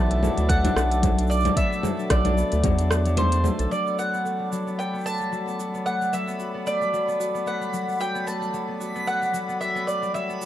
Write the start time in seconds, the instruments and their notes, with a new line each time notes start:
Already playing: analog synth bass B1, harmonium B2 A3 E4 D5, harp F#3 B3 D4 A4, mandolin A5
0.11 harp A3, closed hi-hat
0.23 harp F#3, low conga, shaker
0.38 analog synth bass D2, harp D4, closed hi-hat, shaker
0.49 harp A4, mandolin F#5, kick, closed hi-hat, shaker
0.64 harp D4, closed hi-hat, low conga, shaker
0.76 analog synth bass B1, harp B3, cross-stick, shaker
0.91 harp A3, harmonium D4, closed hi-hat, shaker
1.03 harp F#3, kick, closed hi-hat, low conga, shaker
1.18 harp D4, closed hi-hat, shaker
1.22 shaker
1.27 harp A4, mandolin D5, shaker
1.31 shaker
1.40 shaker
1.45 harp D4, closed hi-hat, low conga, shaker
1.56 harp B3, mandolin E5, kick, closed hi-hat, shaker
1.72 harp A3, shaker
1.83 harp F#3, low conga, shaker
1.99 harp D4, shaker
2.10 analog synth bass B1, harp A4, mandolin D5, kick, cross-stick, closed hi-hat, shaker
2.25 harp D4, closed hi-hat, low conga, shaker
2.37 harp B3, shaker
2.52 analog synth bass D2, harp A3, closed hi-hat, shaker
2.64 analog synth bass E2, harp F#3, kick, closed hi-hat, low conga, shaker
2.79 harp D4, closed hi-hat, shaker
2.91 harp F#3, cross-stick, shaker
3.06 harp F#3, closed hi-hat, shaker
3.17 harp A3, mandolin C5, closed hi-hat, low conga, shaker
3.32 harp D4, closed hi-hat, shaker
3.44 harp A3, low conga, shaker
3.59 analog synth bass B1, harp A4, closed hi-hat, shaker
3.71 harp F#3, mandolin D5, synth texture B5, shaker
3.86 harmonium F#3, harp B3, shaker
3.98 harp F#4, mandolin F#5, shaker
4.13 harp B3, shaker
4.23 harp A3, harmonium A4, shaker
4.40 harp G3
4.52 harp F#3, shaker
4.67 harp B3, shaker
4.78 harp F#4, mandolin G5, shaker
4.93 harp B3, shaker
4.98 shaker
5.00 shaker
5.03 harp A3, mandolin A5, shaker
5.06 shaker
5.10 shaker
5.17 harp G3, shaker
5.21 shaker
5.32 harp F#3, shaker
5.47 harp B3, shaker
5.59 harp F#4, shaker
5.74 harp B3, shaker
5.86 harp A3, mandolin F#5, shaker
6.01 harp G3, shaker
6.13 harp F#3, mandolin E5, shaker
6.28 harp B3, shaker
6.39 harp F#4, shaker
6.54 harp B3
6.66 harp A3, mandolin D5, shaker
6.81 harp G3, shaker
6.93 harp F#3, shaker
7.08 harp B3, shaker
7.19 harp F#4, shaker
7.34 harp B3, shaker
7.46 harp A3, mandolin F#5, shaker
7.61 harp G3, shaker
7.73 harp F#3, shaker
7.87 harp B3, shaker
7.92 shaker
7.94 shaker
7.98 harp F#4, shaker
8.00 mandolin G5, shaker
8.15 harp B3, shaker
8.27 harp A3, mandolin A5, shaker
8.41 harp G3, shaker
8.54 harp F#3, shaker
8.68 harp B3
8.80 harp F#4, shaker
8.95 harp B3, shaker
9.07 harp A3, mandolin F#5, shaker
9.22 harp G3, shaker
9.33 harp F#3, shaker
9.48 harp B3, shaker
9.60 harp F#4, mandolin E5, shaker
9.75 harp B3, shaker
9.87 harp A3, mandolin D5, shaker
10.02 harp G3, shaker
10.14 harp F#3, mandolin E5, shaker
10.29 harp B3, shaker
10.41 harp F#4, shaker